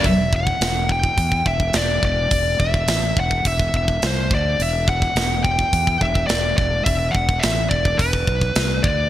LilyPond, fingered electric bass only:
\new Staff \with { instrumentName = "Fingered electric bass" } { \clef bass \time 4/4 \key e \minor \tempo 4 = 106 e,,4 e,,4 e,8 e,,8 e,,8 e,,8 | e,,8 e,,8 a,,8 e,,8 e,,8 e,,8 c,8 d,8 | e,,4 e,,4 e,8 e,,8 e,,8 e,,8 | e,,8 e,,8 a,,8 e,,8 e,,8 b,,8 c,8 d,8 | }